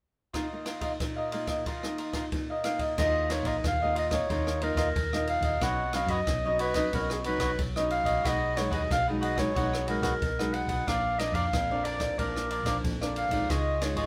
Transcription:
0.33 D#3 A#3 D#4 F4 A#4 D#5 F5, kick, cross-stick, ride
0.53 A#3 D#4 F4
0.65 F4 A#4 D#5 F5, cross-stick, ride
0.81 F4 A#4 D#5 F5, kick, ride
1.00 A#2 A#3 D#4 F4, kick, cross-stick, ride
1.16 A#4 D#5 F5
1.32 A#3 D#4 F4 A#4 D#5 F5, ride
1.47 A#4 D#5 F5, kick, cross-stick, ride
1.66 D#3 F4 A#4 D#5 F5, kick, ride
1.83 A#3 D#4 F4, cross-stick
1.98 F4 A#4 D#5 F5, ride
2.13 F4 A#4 D#5 F5, kick, cross-stick, ride
2.32 A#2 A#3 D#4 F4, kick, ride
2.50 A#4 D#5 F5
2.64 A#3 D#4 F4 F5, cross-stick, ride
2.79 A#4 D#5 F5, kick, ride
2.98 D#2 D#3 A#3 D#4 F4 A#4 D#5 F5, kick, cross-stick, crash
3.29 A#3 D#4 F4 A#4 C#5 D#5 F5, cross-stick, ride
3.43 A#1 F4 A#4 D#5 F5, kick, ride
3.47 D#5
3.64 D#2 A#2 F5, kick, cross-stick, ride
3.81 A#3 D#4 F4 A#4 D#5 F5
3.95 F4 A#4 D#5 F5, ride
4.10 A#3 D#4 F4 A#4 C#5 D#5 F5, kick, cross-stick, ride
4.30 D#2 D#3 A#3 D#4 F4 A#4 D#5 F5, kick, ride
4.47 cross-stick
4.61 A#3 D#4 F4 A#4 D#5 F5, ride
4.75 D#2 F4 A#4 D#5 F5, kick, cross-stick, ride
4.96 D#2 A#2, kick, ride
5.13 A#3 D#4 F4 A#4 D#5 F5, cross-stick
5.27 F5, ride
5.41 D#2 A#4 D#5 F5, kick, ride
5.61 B1 B2 F#3 C#4 D#4 F#4 B4 C#5 D#5 F#5, kick, cross-stick, ride
5.93 F#3 C#4 D#4 F#4 B4 C#5 D#5 F5, cross-stick, ride
6.06 F#2 F#4 B4 C#5 D#5, kick, ride
6.11 D#5
6.27 B1 F#3, kick, cross-stick, ride
6.45 F#3 C#4 D#4 B4 C#5 D#5
6.59 F#4 B4 C#5 D#5, ride
6.74 F#3 C#4 D#4 B4 C#5 D#5, kick, cross-stick, ride
6.93 B1 B2 F#3 C#4 D#4 F#4 A#4 B4 C#5 D#5, kick, ride
7.10 G#4, cross-stick
7.24 F#3 C#4 D#4 F#4 B4 C#5 D#5, ride
7.38 B1 F#4 B4 C#5 D#5, kick, cross-stick, ride
7.59 B1 F#3, kick, ride
7.76 F#3 C#4 D#4 B4 C#5 D#5, cross-stick
7.90 F5, ride
8.04 B1 B4 C#5 D#5, kick, ride
8.24 B1 B2 F#3 G#3 D#4 F#4 G#4 B4 D#5 F#5, kick, cross-stick, ride
8.56 F#3 G#3 D#4 F#4 G#4 B4 C#5 F#5, cross-stick, ride
8.70 D#2 F#4 G#4 B4 F#5, kick, ride
8.74 D#5
8.91 B1 B2 F5, kick, cross-stick, ride
9.07 F#3 G#3 D#4 G#4 B4 F#5
9.21 F#4 G#4 B4 D#5 F#5, ride
9.36 F#3 G#3 D#4 G#4 B4 C#5 F#5, kick, cross-stick, ride
9.55 B1 B2 F#3 G#3 D#4 F#4 G#4 B4 F#5, kick, ride
9.73 cross-stick
9.87 F#3 G#3 D#4 F#4 G#4 A#4 B4 F#5, ride
10.01 B1 F#4 G#4 B4 F#5, kick, cross-stick, ride
10.22 B1 B2, kick, ride
10.39 F#3 G#3 D#4 G#4 B4 F#5, cross-stick
10.54 F#5, ride
10.66 B1 G#4 B4 F#5, kick, ride
10.87 A#1 A#2 F3 A#3 D4 A#4 D5 F5, kick, cross-stick, ride
11.18 F3 A#3 D4 A#4 D5 D#5 F5, cross-stick, ride
11.32 F2 D4 A#4 D5 F5, kick, ride
11.53 A#1 F2, kick, cross-stick, ride
11.70 F3 A#3 D4 A#4 D5 F5
11.84 D4 A#4 D5 F5, ride
12.00 A#4 D5 F5, kick, cross-stick, ride
12.18 A#1 A#2 F3 A#3 D4 A#4 D5 F5, kick, ride
12.36 cross-stick
12.51 D4 A#4 D5 F5, ride
12.63 A#1 F3 A#3 D4 A#4 D5 F5, kick, cross-stick, ride
12.84 A#1 F2, kick, ride
13.01 F3 A#3 D4 A#4 D5 F5, cross-stick
13.16 F5, ride
13.29 A#1 G#3 D#4 D5 F5, kick, ride
13.33 F4 A#4
13.50 C#2 C#3 F4 G#4 C#5 D#5, kick, cross-stick, ride
13.81 G#3 D#4 F4 G#4 C#5 D#5, cross-stick, ride
13.94 G#1 F4 G#4 C#5 D#5, kick, ride

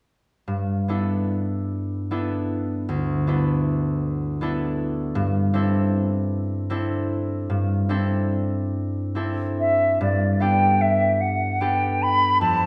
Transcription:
0.48 G2
0.88 B3 D4 E4 A4
2.11 B3 D4 E4 A4
2.89 D2
3.27 B3 D4 E4 A4
4.41 B3 D4 E4 A4
5.15 G2
5.54 C4 D4 E4 A4
6.70 C4 D4 E4 A4
7.50 G2
7.89 C4 D4 E4 A4
9.15 C4 D4 E4 A4
9.60 E5
10.01 G2 D5
10.40 B3 D4 G4 A4 G5
10.81 E5
11.21 F#5
11.61 B3 D4 G4 A4 G5
12.02 B5
12.41 F2 A5

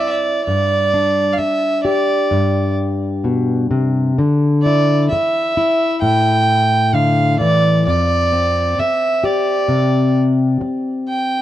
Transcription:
Already playing: C4 E4
0.07 D5 E5
0.44 G2 D5
0.94 D4
1.33 F5
1.38 E5, muted steel-string acoustic guitar stroke
1.84 G4 D5
2.31 G2
3.24 B2
3.71 C3
4.18 D3
4.62 E4 D5
5.09 E5, muted steel-string acoustic guitar stroke
5.57 E4
6.01 A2 G5
6.93 D3 F5
7.39 E3 D5
7.86 F2 D5
8.32 C4
8.78 E5, muted steel-string acoustic guitar stroke
9.24 G4 D5
9.68 C3
10.61 muted steel-string acoustic guitar stroke
11.09 G5

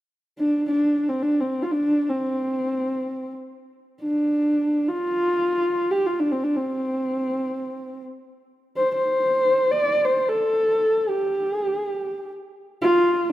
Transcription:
0.39 D4
0.68 D4
1.09 C4
1.22 D4
1.40 C4
1.63 F4
1.72 D4
2.09 C4
4.02 D4
4.88 F4
5.91 G4
6.06 F4
6.20 D4
6.32 C4
6.44 D4
6.56 C4
8.77 C5
8.95 C5
9.71 D5
10.05 C5
10.28 A4
11.09 G4
11.53 G#4
11.64 G4
11.77 G#4
11.89 G4
12.82 F4

